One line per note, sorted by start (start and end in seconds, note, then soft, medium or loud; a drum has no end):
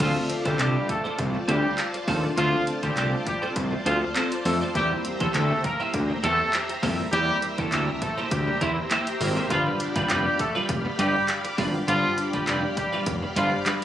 0.00 0.18 D2 loud
0.00 0.14 F3 medium
0.00 0.88 A3 medium
0.00 0.27 C4 medium
0.00 0.88 C4 medium
0.00 0.88 D4 medium
0.00 0.14 F4 loud
0.00 4.71 F4 medium
0.00 0.88 F4 medium
0.00 0.28 F4 medium
0.00 0.88 A4 medium
0.00 0.28 A4 medium
0.00 9.46 C5 medium
0.00 0.28 C5 loud
0.00 4.71 D5 medium
0.00 4.71 A5 medium
0.00 kick loud
0.00 closed hi-hat medium
0.00 crash loud
0.16 0.24 A3 medium
0.29 0.39 C4 medium
0.29 muted clean electric guitar stroke soft
0.29 closed hi-hat medium
0.45 0.54 D2 loud
0.45 0.58 G3 medium
0.45 0.56 C4 medium
0.45 0.54 D4 medium
0.45 0.56 F4 medium
0.45 0.58 G4 medium
0.45 0.56 A4 medium
0.45 0.55 C5 medium
0.45 kick medium
0.45 closed hi-hat medium
0.59 0.78 C2 loud
0.59 0.86 G3 medium
0.59 0.74 C4 medium
0.59 0.74 F4 medium
0.59 0.86 G4 medium
0.59 0.74 A4 medium
0.59 0.74 C5 loud
0.59 clap loud
0.59 closed hi-hat loud
0.75 muted clean electric guitar stroke medium
0.89 1.04 A3 medium
0.89 1.03 A4 medium
0.89 muted clean electric guitar stroke soft
0.89 kick loud
0.89 closed hi-hat medium
1.04 1.15 C4 medium
1.04 1.15 F4 medium
1.04 1.15 A4 medium
1.04 1.15 C5 medium
1.04 1.13 D5 medium
1.19 1.37 C2 loud
1.19 kick loud
1.19 closed hi-hat medium
1.34 1.43 A3 medium
1.34 muted clean electric guitar stroke soft
1.48 1.67 D2 medium
1.48 1.75 G3 medium
1.48 1.63 C4 medium
1.48 1.58 C4 medium
1.48 1.63 F4 loud
1.48 1.75 G4 medium
1.48 1.63 A4 medium
1.48 1.63 C5 medium
1.48 closed hi-hat medium
1.64 muted clean electric guitar stroke medium
1.78 1.88 F4 medium
1.78 muted clean electric guitar stroke medium
1.78 clap loud
1.78 closed hi-hat loud
1.94 muted clean electric guitar stroke medium
1.94 closed hi-hat medium
2.08 2.26 D#2 medium
2.08 2.30 A3 medium
2.08 2.22 C4 loud
2.08 2.30 C4 medium
2.08 2.30 D4 medium
2.08 2.23 F4 medium
2.08 2.30 F4 medium
2.08 2.30 A4 loud
2.08 2.23 A4 medium
2.08 2.17 C5 loud
2.08 2.22 C5 loud
2.08 kick loud
2.08 open hi-hat medium
2.23 2.32 D5 medium
2.23 muted clean electric guitar stroke medium
2.37 2.56 D2 loud
2.37 2.47 F3 loud
2.37 2.64 F3 medium
2.37 3.25 A3 medium
2.37 2.65 C4 medium
2.37 3.25 C4 medium
2.37 3.25 D4 medium
2.37 2.64 F4 loud
2.37 2.65 F4 medium
2.37 3.25 F4 medium
2.37 3.25 A4 medium
2.37 2.65 A4 medium
2.37 2.66 C5 medium
2.37 closed hi-hat medium
2.53 2.62 A3 medium
2.67 2.77 C4 medium
2.67 muted clean electric guitar stroke soft
2.67 closed hi-hat medium
2.83 2.92 D2 loud
2.83 3.10 G3 medium
2.83 2.94 C4 medium
2.83 2.92 D4 medium
2.83 2.94 F4 medium
2.83 3.09 G4 medium
2.83 2.93 A4 medium
2.83 2.93 C5 medium
2.83 kick medium
2.83 closed hi-hat medium
2.97 3.15 C2 medium
2.97 3.11 C4 medium
2.97 3.12 F4 medium
2.97 3.12 A4 loud
2.97 3.11 C5 loud
2.97 clap loud
2.97 closed hi-hat medium
3.13 muted clean electric guitar stroke soft
3.26 3.41 G3 medium
3.26 3.41 G4 medium
3.26 muted clean electric guitar stroke soft
3.26 kick medium
3.26 closed hi-hat medium
3.42 3.53 C4 medium
3.42 3.53 F4 medium
3.42 3.53 A4 medium
3.42 3.52 C5 medium
3.42 3.51 D5 medium
3.56 3.75 C2 loud
3.56 kick loud
3.56 closed hi-hat loud
3.72 3.81 A3 medium
3.72 muted clean electric guitar stroke soft
3.86 4.04 D2 medium
3.86 4.01 F3 medium
3.86 4.00 C4 medium
3.86 3.96 C4 medium
3.86 4.01 F4 medium
3.86 4.00 F4 medium
3.86 4.01 A4 medium
3.86 4.00 C5 medium
3.86 closed hi-hat medium
4.01 muted clean electric guitar stroke soft
4.15 4.30 C4 medium
4.15 4.25 F4 medium
4.15 4.31 F4 medium
4.15 4.31 A4 medium
4.15 4.30 C5 loud
4.15 clap loud
4.15 closed hi-hat loud
4.32 muted clean electric guitar stroke soft
4.32 closed hi-hat medium
4.45 4.64 F2 medium
4.45 4.68 A3 medium
4.45 4.60 A3 medium
4.45 4.68 C4 medium
4.45 4.68 D4 medium
4.45 4.68 F4 medium
4.45 4.60 A4 medium
4.45 4.68 A4 medium
4.45 4.55 C5 loud
4.45 muted clean electric guitar stroke soft
4.45 open hi-hat medium
4.61 4.72 C4 medium
4.61 4.72 F4 medium
4.61 4.72 A4 medium
4.61 4.71 C5 medium
4.61 4.70 D5 medium
4.75 4.94 E2 loud
4.75 5.63 G3 medium
4.75 4.85 G3 medium
4.75 4.90 G3 medium
4.75 5.03 A#3 medium
4.75 5.63 A#3 medium
4.75 5.63 C4 medium
4.75 5.03 E4 medium
4.75 5.63 E4 medium
4.75 4.89 G4 loud
4.75 13.85 G4 medium
4.75 5.63 G4 medium
4.75 5.03 G4 loud
4.75 5.03 C5 loud
4.75 9.47 E5 medium
4.75 9.47 A#5 loud
4.75 kick loud
4.75 closed hi-hat medium
4.91 4.99 A#3 medium
5.05 5.14 C4 medium
5.05 muted clean electric guitar stroke soft
5.05 closed hi-hat medium
5.20 5.29 E2 loud
5.20 5.33 A3 medium
5.20 5.31 A#3 medium
5.20 5.29 E4 medium
5.20 5.31 E4 medium
5.20 5.31 G4 medium
5.20 5.33 A4 medium
5.20 5.31 C5 medium
5.20 kick medium
5.20 closed hi-hat medium
5.34 5.53 D2 loud
5.34 5.62 A3 medium
5.34 5.49 A#3 medium
5.34 5.49 E4 medium
5.34 5.50 G4 medium
5.34 5.61 A4 medium
5.34 5.49 C5 medium
5.34 clap loud
5.34 closed hi-hat loud
5.50 muted clean electric guitar stroke medium
5.64 5.79 A#3 medium
5.64 5.78 A#4 medium
5.64 muted clean electric guitar stroke soft
5.64 kick loud
5.64 closed hi-hat medium
5.80 5.91 A#3 medium
5.80 5.91 E4 medium
5.80 5.90 G4 medium
5.80 5.90 C5 medium
5.80 5.89 E5 medium
5.94 6.12 D2 loud
5.94 kick loud
5.94 closed hi-hat loud
6.10 6.18 A#3 medium
6.10 muted clean electric guitar stroke soft
6.23 6.42 E2 loud
6.23 6.50 A3 medium
6.23 6.38 A#3 medium
6.23 6.33 C4 medium
6.23 6.38 E4 medium
6.23 6.39 G4 medium
6.23 6.50 A4 medium
6.23 6.38 C5 medium
6.23 closed hi-hat medium
6.39 muted clean electric guitar stroke soft
6.53 6.63 G4 medium
6.53 muted clean electric guitar stroke medium
6.53 clap loud
6.53 closed hi-hat loud
6.69 muted clean electric guitar stroke soft
6.69 closed hi-hat medium
6.83 7.01 F2 loud
6.83 7.05 G3 medium
6.83 6.97 A#3 loud
6.83 7.06 A#3 medium
6.83 7.06 C4 medium
6.83 6.98 E4 medium
6.83 7.06 E4 medium
6.83 6.98 G4 medium
6.83 7.06 A4 loud
6.83 6.93 C5 medium
6.83 6.97 C5 loud
6.83 kick loud
6.83 open hi-hat medium
6.98 7.07 E5 medium
6.98 muted clean electric guitar stroke medium
7.12 7.31 E2 loud
7.12 7.22 G3 loud
7.12 8.01 G3 medium
7.12 7.40 G3 medium
7.12 7.40 A#3 medium
7.12 8.01 A#3 medium
7.12 8.01 C4 medium
7.12 7.40 E4 medium
7.12 8.01 E4 medium
7.12 7.39 G4 loud
7.12 8.01 G4 medium
7.12 7.41 G4 medium
7.12 7.41 C5 medium
7.12 closed hi-hat loud
7.29 7.37 A#3 medium
7.42 7.52 C4 medium
7.42 muted clean electric guitar stroke soft
7.42 closed hi-hat medium
7.58 7.67 E2 loud
7.58 7.85 A3 medium
7.58 7.69 A#3 medium
7.58 7.67 E4 medium
7.58 7.69 E4 medium
7.58 7.69 G4 medium
7.58 7.85 A4 medium
7.58 7.68 C5 medium
7.58 kick medium
7.58 closed hi-hat medium
7.72 7.91 D2 loud
7.72 7.87 A#3 medium
7.72 7.87 E4 medium
7.72 7.87 G4 medium
7.72 7.87 C5 medium
7.72 clap loud
7.72 closed hi-hat loud
7.88 muted clean electric guitar stroke soft
8.02 8.16 A3 medium
8.02 8.16 A4 medium
8.02 muted clean electric guitar stroke soft
8.02 kick medium
8.02 closed hi-hat medium
8.18 8.29 A#3 medium
8.18 8.28 E4 medium
8.18 8.28 G4 medium
8.18 8.28 C5 medium
8.18 8.26 E5 medium
8.31 8.50 D2 medium
8.31 8.58 G3 medium
8.31 8.58 G4 medium
8.31 kick loud
8.31 closed hi-hat loud
8.47 8.56 A#3 medium
8.47 muted clean electric guitar stroke soft
8.61 8.80 E2 loud
8.61 8.76 E3 medium
8.61 8.76 A#3 medium
8.61 8.71 C4 medium
8.61 8.75 E4 medium
8.61 8.76 E4 medium
8.61 8.76 G4 loud
8.61 8.76 C5 loud
8.61 kick medium
8.61 closed hi-hat medium
8.77 muted clean electric guitar stroke soft
8.91 9.06 A#3 medium
8.91 9.06 E4 medium
8.91 9.01 G4 medium
8.91 9.06 G4 medium
8.91 9.05 C5 medium
8.91 clap loud
8.91 closed hi-hat loud
9.07 muted clean electric guitar stroke soft
9.07 closed hi-hat medium
9.20 9.39 G#1 loud
9.20 9.43 G3 medium
9.20 9.43 A#3 medium
9.20 9.43 C4 medium
9.20 9.43 E4 medium
9.20 9.43 A#4 loud
9.20 9.30 C5 medium
9.20 muted clean electric guitar stroke soft
9.20 open hi-hat medium
9.36 9.47 A#3 medium
9.36 9.47 E4 medium
9.36 9.47 G4 medium
9.36 9.47 C5 medium
9.36 9.45 E5 medium
9.50 9.69 G1 loud
9.50 9.65 F3 medium
9.50 9.78 G3 medium
9.50 10.38 G3 medium
9.50 9.60 G3 loud
9.50 10.38 B3 medium
9.50 10.38 D4 medium
9.50 9.78 D4 medium
9.50 9.64 F4 loud
9.50 10.38 F4 medium
9.50 9.78 F4 loud
9.50 10.38 G4 medium
9.50 9.79 B4 loud
9.50 13.85 D5 medium
9.50 13.85 F5 medium
9.50 13.85 B5 medium
9.50 kick loud
9.50 closed hi-hat medium
9.66 9.75 B3 medium
9.80 9.90 D4 medium
9.80 muted clean electric guitar stroke soft
9.80 closed hi-hat medium
9.96 10.05 G1 loud
9.96 10.09 G3 medium
9.96 10.07 G3 medium
9.96 10.07 D4 medium
9.96 10.04 F4 medium
9.96 10.06 F4 medium
9.96 10.08 G4 medium
9.96 10.06 B4 medium
9.96 kick medium
9.96 closed hi-hat medium
10.09 10.28 F1 loud
10.09 10.24 G3 medium
10.09 10.36 G3 medium
10.09 10.25 D4 medium
10.09 10.25 F4 medium
10.09 10.36 G4 medium
10.09 10.24 B4 medium
10.09 clap loud
10.09 closed hi-hat loud
10.26 muted clean electric guitar stroke medium
10.39 10.54 A3 medium
10.39 10.53 A4 medium
10.39 muted clean electric guitar stroke soft
10.39 kick medium
10.39 closed hi-hat medium
10.55 10.66 G3 medium
10.55 10.66 D4 medium
10.55 10.66 F4 medium
10.55 10.65 B4 medium
10.55 10.64 F5 medium
10.69 10.88 F1 loud
10.69 kick loud
10.69 closed hi-hat medium
10.85 10.94 B3 medium
10.85 muted clean electric guitar stroke soft
10.99 11.17 G1 loud
10.99 11.13 G3 medium
10.99 11.26 G3 medium
10.99 11.09 D4 medium
10.99 11.14 D4 medium
10.99 11.14 F4 loud
10.99 11.25 G4 medium
10.99 11.13 B4 loud
10.99 closed hi-hat medium
11.15 muted clean electric guitar stroke soft
11.28 11.38 G4 medium
11.28 muted clean electric guitar stroke soft
11.28 clap loud
11.28 closed hi-hat loud
11.44 muted clean electric guitar stroke medium
11.44 closed hi-hat medium
11.58 11.77 G#1 loud
11.58 11.73 G3 medium
11.58 11.81 G3 medium
11.58 11.81 B3 medium
11.58 11.73 D4 loud
11.58 11.81 D4 medium
11.58 11.81 F4 medium
11.58 11.73 F4 loud
11.58 11.81 G4 loud
11.58 11.73 B4 loud
11.58 11.68 D5 medium
11.58 kick loud
11.58 open hi-hat medium
11.74 11.82 F5 medium
11.74 muted clean electric guitar stroke soft
11.88 12.06 G1 loud
11.88 12.15 F3 medium
11.88 12.15 G3 medium
11.88 12.76 G3 medium
11.88 11.97 G3 loud
11.88 12.76 B3 medium
11.88 12.76 D4 medium
11.88 12.16 D4 medium
11.88 12.14 F4 loud
11.88 12.76 F4 medium
11.88 12.16 F4 loud
11.88 12.76 G4 medium
11.88 12.16 B4 loud
11.88 closed hi-hat medium
12.04 12.12 B3 medium
12.18 12.27 D4 medium
12.18 muted clean electric guitar stroke soft
12.18 closed hi-hat medium
12.33 12.42 G1 loud
12.33 12.60 G3 medium
12.33 12.44 G3 medium
12.33 12.44 D4 medium
12.33 12.42 F4 medium
12.33 12.44 F4 medium
12.33 12.60 G4 medium
12.33 12.44 B4 medium
12.33 kick medium
12.33 closed hi-hat soft
12.47 12.66 F1 loud
12.47 12.62 G3 medium
12.47 12.62 D4 medium
12.47 12.62 F4 medium
12.47 12.62 B4 medium
12.47 clap loud
12.47 closed hi-hat loud
12.63 muted clean electric guitar stroke soft
12.77 12.91 G3 medium
12.77 12.91 G4 medium
12.77 muted clean electric guitar stroke soft
12.77 kick medium
12.77 closed hi-hat medium
12.92 13.04 G3 medium
12.92 13.03 D4 medium
12.92 13.03 F4 medium
12.92 13.03 B4 medium
12.92 13.01 F5 medium
13.06 13.25 F1 medium
13.06 kick loud
13.06 closed hi-hat loud
13.22 13.31 B3 medium
13.22 muted clean electric guitar stroke soft
13.36 13.55 G1 medium
13.36 13.51 F3 medium
13.36 13.51 G3 medium
13.36 13.46 D4 medium
13.36 13.51 D4 medium
13.36 13.50 F4 medium
13.36 13.51 F4 medium
13.36 13.51 B4 medium
13.36 closed hi-hat medium
13.52 muted clean electric guitar stroke medium
13.66 13.81 G3 medium
13.66 13.81 D4 medium
13.66 13.81 F4 medium
13.66 13.76 G4 medium
13.66 13.80 B4 loud
13.66 clap loud
13.66 closed hi-hat loud